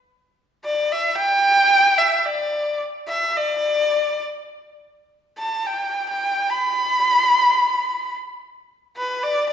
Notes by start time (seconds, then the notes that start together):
0.65 D5
0.92 E5
1.17 G5
1.98 E5
2.18 E5
2.26 D5
3.08 E5
3.37 D5
5.38 A5
5.66 G5
6.09 G5
6.50 B5
8.97 B4
9.23 D5
9.49 D5